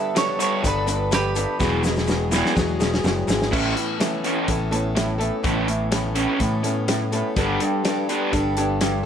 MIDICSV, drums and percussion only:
0, 0, Header, 1, 2, 480
1, 0, Start_track
1, 0, Tempo, 480769
1, 1592, Time_signature, 4, 2, 24, 8
1, 9041, End_track
2, 0, Start_track
2, 0, Title_t, "Drums"
2, 161, Note_on_c, 9, 42, 91
2, 164, Note_on_c, 9, 82, 77
2, 167, Note_on_c, 9, 38, 113
2, 261, Note_off_c, 9, 42, 0
2, 264, Note_off_c, 9, 82, 0
2, 267, Note_off_c, 9, 38, 0
2, 403, Note_on_c, 9, 42, 69
2, 403, Note_on_c, 9, 82, 111
2, 502, Note_off_c, 9, 42, 0
2, 502, Note_off_c, 9, 82, 0
2, 641, Note_on_c, 9, 36, 83
2, 642, Note_on_c, 9, 82, 73
2, 644, Note_on_c, 9, 42, 91
2, 741, Note_off_c, 9, 36, 0
2, 741, Note_off_c, 9, 82, 0
2, 744, Note_off_c, 9, 42, 0
2, 876, Note_on_c, 9, 82, 96
2, 880, Note_on_c, 9, 42, 77
2, 976, Note_off_c, 9, 82, 0
2, 980, Note_off_c, 9, 42, 0
2, 1116, Note_on_c, 9, 82, 69
2, 1120, Note_on_c, 9, 42, 96
2, 1126, Note_on_c, 9, 38, 115
2, 1215, Note_off_c, 9, 82, 0
2, 1220, Note_off_c, 9, 42, 0
2, 1226, Note_off_c, 9, 38, 0
2, 1354, Note_on_c, 9, 82, 86
2, 1360, Note_on_c, 9, 42, 71
2, 1454, Note_off_c, 9, 82, 0
2, 1460, Note_off_c, 9, 42, 0
2, 1599, Note_on_c, 9, 82, 78
2, 1602, Note_on_c, 9, 36, 103
2, 1610, Note_on_c, 9, 38, 67
2, 1698, Note_off_c, 9, 82, 0
2, 1702, Note_off_c, 9, 36, 0
2, 1710, Note_off_c, 9, 38, 0
2, 1834, Note_on_c, 9, 82, 96
2, 1854, Note_on_c, 9, 38, 69
2, 1934, Note_off_c, 9, 82, 0
2, 1953, Note_on_c, 9, 82, 28
2, 1954, Note_off_c, 9, 38, 0
2, 1973, Note_on_c, 9, 38, 59
2, 2053, Note_off_c, 9, 82, 0
2, 2072, Note_off_c, 9, 38, 0
2, 2073, Note_on_c, 9, 82, 77
2, 2092, Note_on_c, 9, 38, 76
2, 2173, Note_off_c, 9, 82, 0
2, 2192, Note_off_c, 9, 38, 0
2, 2316, Note_on_c, 9, 82, 99
2, 2330, Note_on_c, 9, 38, 75
2, 2416, Note_off_c, 9, 82, 0
2, 2430, Note_off_c, 9, 38, 0
2, 2453, Note_on_c, 9, 38, 68
2, 2552, Note_off_c, 9, 38, 0
2, 2559, Note_on_c, 9, 82, 67
2, 2563, Note_on_c, 9, 36, 81
2, 2570, Note_on_c, 9, 38, 82
2, 2659, Note_off_c, 9, 82, 0
2, 2663, Note_off_c, 9, 36, 0
2, 2670, Note_off_c, 9, 38, 0
2, 2802, Note_on_c, 9, 82, 96
2, 2813, Note_on_c, 9, 38, 82
2, 2901, Note_off_c, 9, 82, 0
2, 2913, Note_off_c, 9, 38, 0
2, 2933, Note_on_c, 9, 38, 85
2, 3033, Note_off_c, 9, 38, 0
2, 3036, Note_on_c, 9, 82, 68
2, 3057, Note_on_c, 9, 38, 106
2, 3136, Note_off_c, 9, 82, 0
2, 3157, Note_off_c, 9, 38, 0
2, 3279, Note_on_c, 9, 82, 83
2, 3298, Note_on_c, 9, 38, 101
2, 3378, Note_off_c, 9, 82, 0
2, 3398, Note_off_c, 9, 38, 0
2, 3414, Note_on_c, 9, 38, 85
2, 3514, Note_off_c, 9, 38, 0
2, 3524, Note_on_c, 9, 36, 109
2, 3525, Note_on_c, 9, 49, 101
2, 3623, Note_off_c, 9, 36, 0
2, 3625, Note_off_c, 9, 49, 0
2, 3763, Note_on_c, 9, 42, 66
2, 3863, Note_off_c, 9, 42, 0
2, 3999, Note_on_c, 9, 42, 85
2, 4005, Note_on_c, 9, 38, 113
2, 4099, Note_off_c, 9, 42, 0
2, 4105, Note_off_c, 9, 38, 0
2, 4236, Note_on_c, 9, 42, 62
2, 4336, Note_off_c, 9, 42, 0
2, 4473, Note_on_c, 9, 42, 86
2, 4477, Note_on_c, 9, 36, 73
2, 4573, Note_off_c, 9, 42, 0
2, 4577, Note_off_c, 9, 36, 0
2, 4718, Note_on_c, 9, 42, 69
2, 4818, Note_off_c, 9, 42, 0
2, 4957, Note_on_c, 9, 42, 93
2, 4963, Note_on_c, 9, 38, 115
2, 5057, Note_off_c, 9, 42, 0
2, 5063, Note_off_c, 9, 38, 0
2, 5198, Note_on_c, 9, 42, 64
2, 5298, Note_off_c, 9, 42, 0
2, 5434, Note_on_c, 9, 42, 83
2, 5435, Note_on_c, 9, 36, 110
2, 5534, Note_off_c, 9, 36, 0
2, 5534, Note_off_c, 9, 42, 0
2, 5673, Note_on_c, 9, 42, 63
2, 5773, Note_off_c, 9, 42, 0
2, 5908, Note_on_c, 9, 42, 92
2, 5914, Note_on_c, 9, 38, 116
2, 6008, Note_off_c, 9, 42, 0
2, 6014, Note_off_c, 9, 38, 0
2, 6146, Note_on_c, 9, 42, 68
2, 6245, Note_off_c, 9, 42, 0
2, 6390, Note_on_c, 9, 42, 83
2, 6392, Note_on_c, 9, 36, 81
2, 6489, Note_off_c, 9, 42, 0
2, 6492, Note_off_c, 9, 36, 0
2, 6629, Note_on_c, 9, 42, 65
2, 6729, Note_off_c, 9, 42, 0
2, 6871, Note_on_c, 9, 42, 92
2, 6877, Note_on_c, 9, 38, 104
2, 6971, Note_off_c, 9, 42, 0
2, 6977, Note_off_c, 9, 38, 0
2, 7114, Note_on_c, 9, 42, 55
2, 7214, Note_off_c, 9, 42, 0
2, 7353, Note_on_c, 9, 42, 81
2, 7355, Note_on_c, 9, 36, 109
2, 7453, Note_off_c, 9, 42, 0
2, 7455, Note_off_c, 9, 36, 0
2, 7592, Note_on_c, 9, 42, 64
2, 7691, Note_off_c, 9, 42, 0
2, 7834, Note_on_c, 9, 42, 91
2, 7840, Note_on_c, 9, 38, 104
2, 7934, Note_off_c, 9, 42, 0
2, 7940, Note_off_c, 9, 38, 0
2, 8079, Note_on_c, 9, 42, 61
2, 8179, Note_off_c, 9, 42, 0
2, 8317, Note_on_c, 9, 42, 80
2, 8318, Note_on_c, 9, 36, 79
2, 8417, Note_off_c, 9, 42, 0
2, 8418, Note_off_c, 9, 36, 0
2, 8554, Note_on_c, 9, 42, 66
2, 8654, Note_off_c, 9, 42, 0
2, 8793, Note_on_c, 9, 42, 99
2, 8799, Note_on_c, 9, 38, 100
2, 8893, Note_off_c, 9, 42, 0
2, 8899, Note_off_c, 9, 38, 0
2, 9041, End_track
0, 0, End_of_file